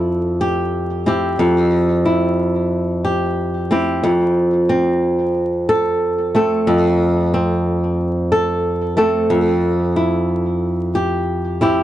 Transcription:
0, 0, Header, 1, 2, 480
1, 0, Start_track
1, 0, Key_signature, -1, "major"
1, 0, Tempo, 659341
1, 1015, Time_signature, 4, 2, 24, 8
1, 8613, End_track
2, 0, Start_track
2, 0, Title_t, "Nylon-string guitar"
2, 0, Program_c, 0, 24
2, 0, Note_on_c, 0, 41, 93
2, 0, Note_on_c, 0, 64, 64
2, 296, Note_on_c, 0, 67, 72
2, 768, Note_off_c, 0, 64, 0
2, 773, Note_on_c, 0, 60, 62
2, 776, Note_off_c, 0, 67, 0
2, 777, Note_on_c, 0, 64, 64
2, 784, Note_on_c, 0, 67, 73
2, 1004, Note_off_c, 0, 41, 0
2, 1013, Note_on_c, 0, 41, 84
2, 1487, Note_off_c, 0, 64, 0
2, 1495, Note_on_c, 0, 64, 67
2, 2209, Note_off_c, 0, 67, 0
2, 2217, Note_on_c, 0, 67, 68
2, 2695, Note_off_c, 0, 60, 0
2, 2695, Note_off_c, 0, 64, 0
2, 2696, Note_off_c, 0, 67, 0
2, 2698, Note_on_c, 0, 60, 64
2, 2705, Note_on_c, 0, 64, 60
2, 2708, Note_on_c, 0, 67, 68
2, 2928, Note_off_c, 0, 41, 0
2, 2937, Note_on_c, 0, 41, 85
2, 2994, Note_off_c, 0, 64, 0
2, 2995, Note_off_c, 0, 67, 0
2, 3417, Note_off_c, 0, 60, 0
2, 3417, Note_on_c, 0, 60, 65
2, 4141, Note_on_c, 0, 69, 77
2, 4618, Note_off_c, 0, 69, 0
2, 4620, Note_on_c, 0, 57, 63
2, 4621, Note_off_c, 0, 60, 0
2, 4624, Note_on_c, 0, 60, 63
2, 4631, Note_on_c, 0, 69, 71
2, 4848, Note_off_c, 0, 41, 0
2, 4857, Note_on_c, 0, 41, 91
2, 5339, Note_off_c, 0, 60, 0
2, 5342, Note_on_c, 0, 60, 67
2, 6047, Note_off_c, 0, 69, 0
2, 6056, Note_on_c, 0, 69, 74
2, 6520, Note_off_c, 0, 57, 0
2, 6529, Note_off_c, 0, 69, 0
2, 6529, Note_on_c, 0, 57, 62
2, 6531, Note_off_c, 0, 60, 0
2, 6533, Note_on_c, 0, 60, 65
2, 6538, Note_on_c, 0, 69, 73
2, 6762, Note_off_c, 0, 41, 0
2, 6771, Note_on_c, 0, 41, 92
2, 6826, Note_off_c, 0, 57, 0
2, 6830, Note_off_c, 0, 69, 0
2, 7250, Note_off_c, 0, 60, 0
2, 7253, Note_on_c, 0, 64, 67
2, 7971, Note_on_c, 0, 67, 72
2, 8448, Note_off_c, 0, 64, 0
2, 8451, Note_on_c, 0, 60, 65
2, 8456, Note_on_c, 0, 64, 68
2, 8460, Note_off_c, 0, 67, 0
2, 8463, Note_on_c, 0, 67, 76
2, 8613, Note_off_c, 0, 41, 0
2, 8613, Note_off_c, 0, 60, 0
2, 8613, Note_off_c, 0, 64, 0
2, 8613, Note_off_c, 0, 67, 0
2, 8613, End_track
0, 0, End_of_file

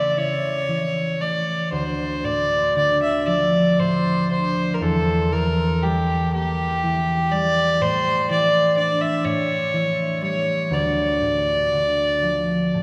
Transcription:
0, 0, Header, 1, 3, 480
1, 0, Start_track
1, 0, Key_signature, -1, "minor"
1, 0, Tempo, 1029160
1, 798, Time_signature, 6, 3, 24, 8
1, 2241, Tempo, 996678
1, 3681, Tempo, 967742
1, 5121, Tempo, 1023891
1, 6119, End_track
2, 0, Start_track
2, 0, Title_t, "Fiddle"
2, 0, Program_c, 0, 110
2, 0, Note_on_c, 0, 74, 70
2, 43, Note_off_c, 0, 74, 0
2, 43, Note_on_c, 0, 74, 52
2, 83, Note_on_c, 0, 73, 75
2, 90, Note_off_c, 0, 74, 0
2, 564, Note_on_c, 0, 74, 68
2, 571, Note_off_c, 0, 73, 0
2, 802, Note_off_c, 0, 74, 0
2, 805, Note_on_c, 0, 72, 68
2, 1048, Note_on_c, 0, 74, 75
2, 1055, Note_off_c, 0, 72, 0
2, 1288, Note_off_c, 0, 74, 0
2, 1293, Note_on_c, 0, 74, 70
2, 1402, Note_off_c, 0, 74, 0
2, 1410, Note_on_c, 0, 76, 74
2, 1520, Note_off_c, 0, 76, 0
2, 1527, Note_on_c, 0, 74, 73
2, 1768, Note_on_c, 0, 72, 77
2, 1775, Note_off_c, 0, 74, 0
2, 2005, Note_off_c, 0, 72, 0
2, 2009, Note_on_c, 0, 72, 81
2, 2210, Note_on_c, 0, 70, 57
2, 2217, Note_off_c, 0, 72, 0
2, 2253, Note_on_c, 0, 69, 80
2, 2261, Note_off_c, 0, 70, 0
2, 2493, Note_on_c, 0, 70, 74
2, 2500, Note_off_c, 0, 69, 0
2, 2733, Note_on_c, 0, 67, 72
2, 2740, Note_off_c, 0, 70, 0
2, 2971, Note_off_c, 0, 67, 0
2, 2977, Note_on_c, 0, 67, 79
2, 3452, Note_on_c, 0, 74, 95
2, 3459, Note_off_c, 0, 67, 0
2, 3693, Note_on_c, 0, 72, 94
2, 3701, Note_off_c, 0, 74, 0
2, 3928, Note_off_c, 0, 72, 0
2, 3936, Note_on_c, 0, 74, 82
2, 4151, Note_off_c, 0, 74, 0
2, 4165, Note_on_c, 0, 74, 77
2, 4284, Note_on_c, 0, 76, 74
2, 4292, Note_off_c, 0, 74, 0
2, 4401, Note_on_c, 0, 73, 81
2, 4409, Note_off_c, 0, 76, 0
2, 4877, Note_off_c, 0, 73, 0
2, 4889, Note_on_c, 0, 73, 82
2, 5137, Note_on_c, 0, 74, 77
2, 5144, Note_off_c, 0, 73, 0
2, 6119, Note_off_c, 0, 74, 0
2, 6119, End_track
3, 0, Start_track
3, 0, Title_t, "Harp"
3, 0, Program_c, 1, 46
3, 0, Note_on_c, 1, 49, 41
3, 79, Note_on_c, 1, 64, 43
3, 318, Note_on_c, 1, 52, 35
3, 558, Note_on_c, 1, 57, 37
3, 801, Note_on_c, 1, 38, 51
3, 821, Note_off_c, 1, 49, 0
3, 821, Note_off_c, 1, 52, 0
3, 1044, Note_on_c, 1, 45, 44
3, 1286, Note_on_c, 1, 50, 43
3, 1297, Note_off_c, 1, 64, 0
3, 1308, Note_off_c, 1, 45, 0
3, 1525, Note_on_c, 1, 53, 48
3, 1766, Note_on_c, 1, 45, 43
3, 1790, Note_off_c, 1, 50, 0
3, 2006, Note_on_c, 1, 50, 46
3, 2028, Note_off_c, 1, 45, 0
3, 2028, Note_off_c, 1, 53, 0
3, 2111, Note_off_c, 1, 57, 0
3, 2242, Note_on_c, 1, 40, 64
3, 2265, Note_off_c, 1, 38, 0
3, 2265, Note_off_c, 1, 50, 0
3, 2490, Note_on_c, 1, 52, 49
3, 2733, Note_on_c, 1, 55, 49
3, 2979, Note_on_c, 1, 58, 53
3, 3213, Note_off_c, 1, 52, 0
3, 3218, Note_on_c, 1, 52, 48
3, 3445, Note_off_c, 1, 55, 0
3, 3451, Note_on_c, 1, 55, 50
3, 3685, Note_on_c, 1, 45, 64
3, 3706, Note_off_c, 1, 40, 0
3, 3706, Note_off_c, 1, 52, 0
3, 3706, Note_off_c, 1, 55, 0
3, 3714, Note_off_c, 1, 58, 0
3, 3930, Note_on_c, 1, 52, 52
3, 4165, Note_on_c, 1, 62, 52
3, 4395, Note_off_c, 1, 45, 0
3, 4401, Note_on_c, 1, 45, 62
3, 4421, Note_off_c, 1, 52, 0
3, 4642, Note_on_c, 1, 52, 45
3, 4883, Note_on_c, 1, 55, 46
3, 5124, Note_on_c, 1, 38, 57
3, 5144, Note_off_c, 1, 45, 0
3, 5144, Note_off_c, 1, 52, 0
3, 5144, Note_off_c, 1, 55, 0
3, 5361, Note_on_c, 1, 45, 44
3, 5530, Note_off_c, 1, 62, 0
3, 5600, Note_on_c, 1, 50, 42
3, 5617, Note_off_c, 1, 45, 0
3, 5836, Note_on_c, 1, 53, 44
3, 6079, Note_on_c, 1, 45, 37
3, 6080, Note_on_c, 1, 81, 48
3, 6102, Note_off_c, 1, 50, 0
3, 6119, Note_off_c, 1, 38, 0
3, 6119, Note_off_c, 1, 45, 0
3, 6119, Note_off_c, 1, 53, 0
3, 6119, Note_off_c, 1, 81, 0
3, 6119, End_track
0, 0, End_of_file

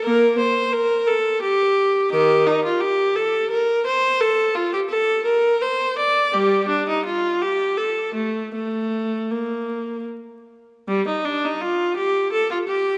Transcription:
0, 0, Header, 1, 2, 480
1, 0, Start_track
1, 0, Tempo, 694444
1, 25, Time_signature, 3, 2, 24, 8
1, 3385, Tempo, 716846
1, 4825, Tempo, 744417
1, 5785, Tempo, 778210
1, 7225, Tempo, 722022
1, 8626, End_track
2, 0, Start_track
2, 0, Title_t, "Viola"
2, 0, Program_c, 0, 41
2, 27, Note_on_c, 0, 70, 70
2, 30, Note_on_c, 0, 58, 66
2, 250, Note_off_c, 0, 58, 0
2, 260, Note_off_c, 0, 70, 0
2, 266, Note_on_c, 0, 72, 66
2, 500, Note_off_c, 0, 72, 0
2, 504, Note_on_c, 0, 70, 71
2, 741, Note_on_c, 0, 69, 72
2, 746, Note_off_c, 0, 70, 0
2, 979, Note_on_c, 0, 67, 81
2, 985, Note_off_c, 0, 69, 0
2, 1449, Note_off_c, 0, 67, 0
2, 1462, Note_on_c, 0, 51, 68
2, 1462, Note_on_c, 0, 67, 79
2, 1683, Note_off_c, 0, 51, 0
2, 1695, Note_off_c, 0, 67, 0
2, 1705, Note_on_c, 0, 63, 68
2, 1822, Note_off_c, 0, 63, 0
2, 1828, Note_on_c, 0, 65, 66
2, 1941, Note_off_c, 0, 65, 0
2, 1941, Note_on_c, 0, 67, 72
2, 2180, Note_off_c, 0, 67, 0
2, 2184, Note_on_c, 0, 69, 74
2, 2424, Note_off_c, 0, 69, 0
2, 2424, Note_on_c, 0, 70, 70
2, 2661, Note_off_c, 0, 70, 0
2, 2671, Note_on_c, 0, 72, 77
2, 2905, Note_off_c, 0, 72, 0
2, 2909, Note_on_c, 0, 69, 76
2, 3147, Note_off_c, 0, 69, 0
2, 3147, Note_on_c, 0, 65, 68
2, 3266, Note_off_c, 0, 65, 0
2, 3273, Note_on_c, 0, 67, 63
2, 3320, Note_off_c, 0, 67, 0
2, 3382, Note_on_c, 0, 69, 75
2, 3619, Note_off_c, 0, 69, 0
2, 3623, Note_on_c, 0, 70, 67
2, 3862, Note_off_c, 0, 70, 0
2, 3870, Note_on_c, 0, 72, 71
2, 4110, Note_off_c, 0, 72, 0
2, 4112, Note_on_c, 0, 74, 72
2, 4344, Note_off_c, 0, 74, 0
2, 4346, Note_on_c, 0, 55, 61
2, 4348, Note_on_c, 0, 67, 65
2, 4568, Note_off_c, 0, 55, 0
2, 4579, Note_on_c, 0, 62, 60
2, 4586, Note_off_c, 0, 67, 0
2, 4700, Note_off_c, 0, 62, 0
2, 4714, Note_on_c, 0, 63, 59
2, 4827, Note_on_c, 0, 65, 68
2, 4828, Note_off_c, 0, 63, 0
2, 5056, Note_off_c, 0, 65, 0
2, 5063, Note_on_c, 0, 67, 68
2, 5296, Note_on_c, 0, 69, 60
2, 5298, Note_off_c, 0, 67, 0
2, 5534, Note_on_c, 0, 57, 57
2, 5537, Note_off_c, 0, 69, 0
2, 5779, Note_off_c, 0, 57, 0
2, 5788, Note_on_c, 0, 57, 59
2, 6254, Note_off_c, 0, 57, 0
2, 6262, Note_on_c, 0, 58, 44
2, 6737, Note_off_c, 0, 58, 0
2, 7233, Note_on_c, 0, 55, 67
2, 7354, Note_off_c, 0, 55, 0
2, 7360, Note_on_c, 0, 63, 55
2, 7478, Note_off_c, 0, 63, 0
2, 7480, Note_on_c, 0, 62, 56
2, 7599, Note_off_c, 0, 62, 0
2, 7610, Note_on_c, 0, 63, 54
2, 7720, Note_on_c, 0, 65, 63
2, 7723, Note_off_c, 0, 63, 0
2, 7954, Note_on_c, 0, 67, 62
2, 7956, Note_off_c, 0, 65, 0
2, 8185, Note_off_c, 0, 67, 0
2, 8189, Note_on_c, 0, 69, 69
2, 8306, Note_off_c, 0, 69, 0
2, 8316, Note_on_c, 0, 65, 55
2, 8362, Note_off_c, 0, 65, 0
2, 8426, Note_on_c, 0, 67, 62
2, 8626, Note_off_c, 0, 67, 0
2, 8626, End_track
0, 0, End_of_file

